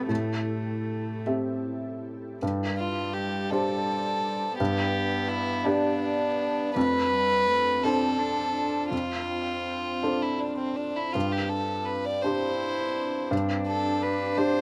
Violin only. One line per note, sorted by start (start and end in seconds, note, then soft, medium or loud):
2.78 3.15 F4 soft
3.13 3.52 G4 soft
3.50 4.59 A4 medium
4.60 5.30 G4 medium
5.28 5.66 E4 medium
5.64 6.74 D4 medium
6.75 7.85 B4 medium
7.83 8.91 A4 medium
8.92 10.24 F4 medium
10.22 10.40 E4 soft
10.39 10.58 D4 soft
10.59 10.77 C4 soft
10.76 10.98 D4 soft
10.96 11.14 E4 soft
11.13 11.34 F4 soft
11.32 11.51 G4 soft
11.49 11.87 A4 soft
11.85 12.07 B4 soft
12.05 12.24 D5 medium
12.22 13.31 C5 medium
13.67 14.04 A4 medium
14.02 14.39 B4 medium
14.38 14.61 C5 medium